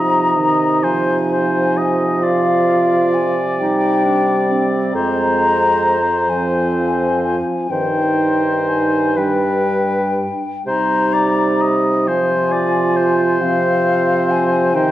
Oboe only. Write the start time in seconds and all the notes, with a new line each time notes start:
Already playing: D#5
0.84 C5
1.30 C5
1.78 D#5
2.23 D5
4.95 C5
7.71 C5
9.17 B4
10.67 C5
11.13 D5
11.61 D#5
12.08 C5
12.52 D5
12.97 C5
14.76 C5